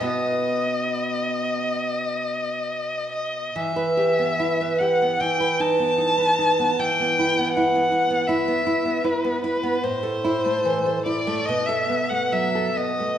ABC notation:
X:1
M:4/4
L:1/16
Q:1/4=73
K:Em
V:1 name="Violin"
^d12- d2 d2 | e6 f2 g2 a6 | g4 f4 e4 B2 B2 | c6 d2 ^d e2 f e2 d2 |]
V:2 name="Nylon-string guitar"
[B,,B,F]16 | E, B G B, E B G B, E, B ^D B, D B D B, | E, B, E B, E B, E B, E B, E B, E B, E B, | A,, A E A, E, A E A, B,, A B, A, F, A B, A, |]